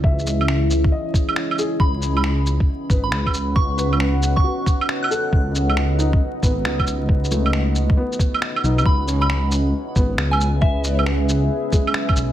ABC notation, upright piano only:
X:1
M:4/4
L:1/8
Q:"Swing 16ths" 1/4=136
K:C#m
V:1 name="Upright piano"
e4 d3 G- | G z4 B3- | B B3 F3 A- | A3 D2 B,3- |
B, A,3 B,3 D- | D C4 B,3- | B,2 z3 G,3 |]